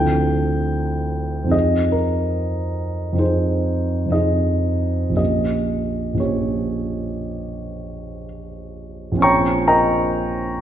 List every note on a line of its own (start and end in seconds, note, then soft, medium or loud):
0.00 1.45 D2 soft
0.00 1.45 F3 soft
0.00 1.46 C4 soft
0.00 1.48 E4 soft
0.00 1.49 A4 soft
0.00 1.53 G5 medium
1.44 3.11 F2 soft
1.44 3.13 F3 soft
1.44 3.14 C4 soft
1.49 3.16 D#4 soft
1.49 3.17 G#4 soft
1.49 1.94 D#5 medium
1.92 3.20 A#4 medium
3.13 4.05 F2 soft
3.13 4.06 F3 soft
3.13 4.08 C4 soft
3.18 4.10 D#4 soft
3.18 4.12 G#4 soft
3.18 4.15 C5 medium
4.06 5.10 F2 soft
4.06 5.10 F3 soft
4.06 5.12 C4 soft
4.12 5.13 D#4 soft
4.12 5.14 G#4 soft
4.12 5.15 D#5 medium
5.10 6.13 A#1 soft
5.10 6.14 F3 soft
5.14 6.15 A#3 soft
5.14 6.17 C#4 soft
5.14 6.18 G4 soft
5.14 6.22 D#5 medium
6.14 9.10 A#1 soft
6.14 9.12 F3 soft
6.14 9.16 A#3 soft
6.19 9.17 C#4 soft
6.19 9.18 G4 soft
6.19 8.24 C#5 soft
9.12 10.61 A#1 soft
9.12 10.61 F3 soft
9.16 10.61 C4 soft
9.16 10.61 C#4 soft
9.22 10.61 F4 soft
9.22 9.64 C#5 soft
9.22 9.64 G5 medium
9.22 9.63 A#5 medium
9.22 9.66 C#6 medium
9.68 10.61 A#4 soft
9.68 10.61 D#5 soft
9.68 10.61 G5 soft
9.68 10.61 A#5 medium